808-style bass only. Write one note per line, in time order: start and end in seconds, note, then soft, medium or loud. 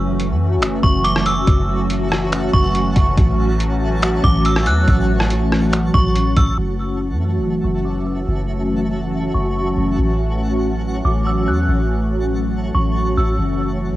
0.00 0.32 F#1 loud
0.30 0.58 F#2 medium
0.57 0.82 F#1 loud
0.83 1.45 F#1 loud
1.47 2.50 F#1 loud
2.54 2.94 F#1 loud
2.96 3.17 F#1 loud
3.17 4.20 A1 loud
4.24 4.68 A1 loud
4.66 4.87 E2 loud
4.88 5.90 A1 loud
5.94 6.35 A1 loud
6.37 6.57 A1 loud
6.58 7.13 F#1 loud
7.11 7.39 F#2 medium
7.38 7.63 F#1 loud
7.64 8.26 F#1 loud
8.28 9.31 F#1 loud
9.34 9.75 F#1 loud
9.77 9.97 F#1 loud
9.98 11.01 A1 loud
11.05 11.49 A1 loud
11.47 11.67 E2 medium
11.68 12.71 A1 loud
12.75 13.16 A1 loud
13.17 13.38 A1 loud
13.39 13.93 F#1 loud
13.92 13.96 F#2 medium